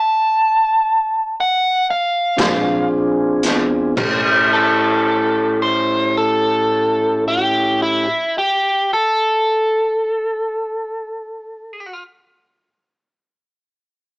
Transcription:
Already playing: overdriven electric guitar A5
1.40 overdriven electric guitar F#5
1.90 overdriven electric guitar F5
2.36 tine electric piano A#1, tonewheel organ C4 D4 F4 G#4, kick, snare, closed hi-hat
3.43 tine electric piano E2, snare, closed hi-hat
3.96 tine electric piano A2, tonewheel organ A3 C#4 E4 G4, kick, crash
4.53 overdriven electric guitar A4
5.62 overdriven electric guitar C5
6.17 overdriven electric guitar A4
7.28 overdriven electric guitar G4
7.82 overdriven electric guitar E4
8.38 overdriven electric guitar G4
8.93 overdriven electric guitar A4

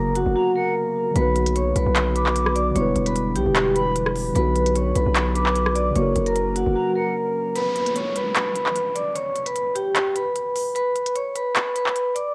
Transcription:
Already playing: 808-style bass F#1, synth keys C#3 F#3 A#3 F#4 A#4, ambient pad C#3 A#3 F#4, vibraphone A#4 A#5
0.16 vibraphone F#4 F#5, closed hi-hat
0.26 808-style bass F#1
0.35 vibraphone F#4 F#5, flute A#5
0.56 vibraphone A#4 A#5, flute F#5
1.10 synth keys D3 F#3
1.15 808-style bass B1, ambient pad D3 B3, synth keys B3 F#4, vibraphone B4 B5, closed hi-hat
1.21 synth keys B4
1.36 closed hi-hat
1.46 closed hi-hat
1.55 vibraphone C#5 C#6, closed hi-hat
1.76 808-style bass B1, vibraphone B4 B5, closed hi-hat
1.86 808-style bass B1
1.96 clap, closed hi-hat
2.15 vibraphone B4 B5, flute D6, closed hi-hat
2.26 clap
2.36 closed hi-hat
2.46 cross-stick
2.55 vibraphone D5 D6, closed hi-hat
2.71 synth keys D3 G3
2.75 808-style bass E1, ambient pad E3 D4 G4, synth keys B3 E4, vibraphone C#5 C#6, closed hi-hat
2.81 synth keys B4
2.96 808-style bass E1, closed hi-hat
3.06 vibraphone B4 B5, closed hi-hat
3.16 closed hi-hat
3.35 808-style bass B1, vibraphone G4 G5, closed hi-hat
3.46 808-style bass E1
3.56 vibraphone G4 G5, clap, closed hi-hat
3.75 vibraphone B4 B5, flute B5, closed hi-hat
3.96 closed hi-hat
4.06 cross-stick
4.16 open hi-hat
4.30 synth keys D3 F#3
4.35 808-style bass B1, ambient pad F#3 B4, synth keys B3 F#4, vibraphone B4 B5, closed hi-hat
4.41 synth keys B4
4.56 closed hi-hat
4.66 closed hi-hat
4.76 vibraphone C#5 C#6, closed hi-hat
4.96 808-style bass B1, vibraphone B4 B5, closed hi-hat
5.06 808-style bass B1
5.16 clap, closed hi-hat
5.35 vibraphone B4 B5, flute D6, closed hi-hat
5.46 clap
5.56 closed hi-hat
5.66 cross-stick
5.75 vibraphone D5 D6, closed hi-hat
5.90 synth keys C#3 F#3
5.96 808-style bass F#1, ambient pad F#3 C#4 A#4, synth keys A#3 F#4, vibraphone C#5 C#6, closed hi-hat
6.01 synth keys A#4
6.16 808-style bass F#1, closed hi-hat
6.26 vibraphone A#4 A#5, closed hi-hat
6.36 closed hi-hat
6.56 vibraphone F#4 F#5, closed hi-hat
6.66 808-style bass F#1
6.75 vibraphone F#4 F#5, flute A#5
6.96 vibraphone A#4 A#5, flute F#5
7.55 vibraphone B4 B5, closed hi-hat, downlifter
7.76 closed hi-hat
7.86 closed hi-hat
7.95 vibraphone C#5 C#6, closed hi-hat
8.16 vibraphone B4 B5, closed hi-hat
8.36 clap, closed hi-hat
8.55 vibraphone B4 B5, closed hi-hat
8.66 clap
8.76 closed hi-hat
8.95 vibraphone D5 D6, closed hi-hat
9.15 vibraphone C#5 C#6, closed hi-hat
9.36 closed hi-hat
9.46 vibraphone B4 B5, closed hi-hat
9.56 closed hi-hat
9.75 vibraphone G4 G5, closed hi-hat
9.96 vibraphone G4 G5, clap, closed hi-hat
10.16 vibraphone B4 B5, closed hi-hat
10.36 closed hi-hat
10.56 open hi-hat
10.75 vibraphone B4 B5, closed hi-hat
10.96 closed hi-hat
11.06 closed hi-hat
11.15 vibraphone C#5 C#6, closed hi-hat
11.36 vibraphone B4 B5, closed hi-hat
11.56 clap, closed hi-hat
11.76 vibraphone B4 B5, closed hi-hat
11.86 clap
11.96 closed hi-hat
12.15 vibraphone D5 D6, closed hi-hat

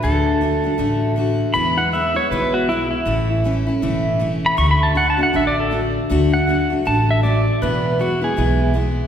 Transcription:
0.03 upright bass D2, steel-string acoustic guitar D3 A3 D4 F#4, pedal steel guitar A4
0.41 steel-string acoustic guitar D3 A3 D4 F#4
0.64 steel-string acoustic guitar A3 D4 F#4
0.78 upright bass A1, steel-string acoustic guitar D3 A3 D4 F#4
1.16 steel-string acoustic guitar D3 A3 D4 F#4
1.53 steel-string acoustic guitar E2 B2 E3 G#3 B3 E4, upright bass E2, pedal steel guitar B5
1.77 steel-string acoustic guitar E3 G#3 B3 E4, pedal steel guitar F#5
1.92 steel-string acoustic guitar E3 G#3 B3 E4, pedal steel guitar E5
2.14 steel-string acoustic guitar E3 G#3 B3 E4, pedal steel guitar C#5
2.31 upright bass B1, steel-string acoustic guitar E2 B2 E3 G#3 B3 E4, pedal steel guitar B4
2.54 pedal steel guitar F#4
2.69 steel-string acoustic guitar E3 G#3 B3 E4, pedal steel guitar E4
2.91 pedal steel guitar E4
3.06 upright bass A1, steel-string acoustic guitar A2 E3 A3 C#4 E4
3.44 steel-string acoustic guitar E3 A3 C#4 E4
3.67 steel-string acoustic guitar A3 C#4 E4
3.82 upright bass E1, steel-string acoustic guitar A2 E3 A3 C#4 E4
4.19 steel-string acoustic guitar E3 A3 C#4 E4
4.46 pedal steel guitar B5
4.57 upright bass D2, steel-string acoustic guitar D3 A3 D4 F#4, pedal steel guitar C#6
4.71 pedal steel guitar B5
4.83 pedal steel guitar A5
4.95 steel-string acoustic guitar D3 A3 D4 F#4, pedal steel guitar F#5
5.10 pedal steel guitar A5
5.17 steel-string acoustic guitar A3 D4 F#4
5.23 pedal steel guitar F#5
5.33 upright bass A1, steel-string acoustic guitar D3 A3 D4 F#4, pedal steel guitar E5
5.47 pedal steel guitar D5
5.60 pedal steel guitar A4
5.71 steel-string acoustic guitar D3 A3 D4 F#4
6.10 upright bass D2, steel-string acoustic guitar D3 A3 D4 F#4
6.33 steel-string acoustic guitar A3 D4 F#4, pedal steel guitar F#5
6.47 steel-string acoustic guitar D3 A3 D4 F#4
6.70 steel-string acoustic guitar A3 D4 F#4
6.85 upright bass A1, steel-string acoustic guitar D3 A3 D4 F#4, pedal steel guitar A5
7.11 pedal steel guitar E5
7.23 steel-string acoustic guitar D3 A3 D4 F#4, pedal steel guitar D5
7.62 steel-string acoustic guitar E2 B2 E3 G#3 B3 E4, upright bass E2, pedal steel guitar B4
7.99 steel-string acoustic guitar E3 G#3 B3 E4, pedal steel guitar F#4
8.21 steel-string acoustic guitar E3 G#3 B3 E4, pedal steel guitar G#4
8.37 upright bass B1, steel-string acoustic guitar E2 B2 E3 G#3 B3 E4
8.74 steel-string acoustic guitar E3 G#3 B3 E4

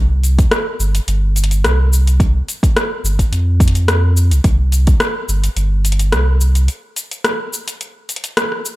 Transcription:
Already playing: sub bass C2
0.23 closed hi-hat, shaker
0.39 kick, closed hi-hat, shaker
0.51 cross-stick, closed hi-hat, shaker
0.79 sub bass G1, shaker
0.95 closed hi-hat, shaker
1.07 sub bass G1, closed hi-hat, shaker
1.36 closed hi-hat, shaker
1.44 closed hi-hat
1.51 closed hi-hat, shaker
1.64 sub bass C2, cross-stick, closed hi-hat, shaker
1.93 shaker
2.07 closed hi-hat, shaker
2.20 kick, closed hi-hat, shaker
2.48 closed hi-hat, shaker
2.63 kick, closed hi-hat, shaker
2.77 cross-stick, closed hi-hat, shaker
3.04 sub bass G1, shaker
3.19 kick, closed hi-hat, shaker
3.32 sub bass F2, closed hi-hat, shaker
3.60 kick, closed hi-hat, shaker
3.68 closed hi-hat
3.75 closed hi-hat, shaker
3.88 cross-stick, closed hi-hat, shaker
4.17 shaker
4.31 sub bass C2, closed hi-hat, shaker
4.44 sub bass C2, kick, closed hi-hat, shaker
4.72 closed hi-hat, shaker
4.87 kick, closed hi-hat, shaker
5.00 cross-stick, closed hi-hat, shaker
5.28 sub bass G1, shaker
5.44 closed hi-hat, shaker
5.56 sub bass G1, closed hi-hat, shaker
5.85 closed hi-hat, shaker
5.92 closed hi-hat
5.99 closed hi-hat, shaker
6.12 sub bass C2, cross-stick, closed hi-hat, shaker
6.41 shaker
6.55 closed hi-hat, shaker
6.68 closed hi-hat, shaker
6.96 closed hi-hat, shaker
7.11 closed hi-hat, shaker
7.25 cross-stick, closed hi-hat, shaker
7.53 shaker
7.68 closed hi-hat, shaker
7.81 closed hi-hat, shaker
8.09 closed hi-hat, shaker
8.16 closed hi-hat
8.24 closed hi-hat, shaker
8.37 cross-stick, closed hi-hat, shaker
8.52 cross-stick
8.65 shaker

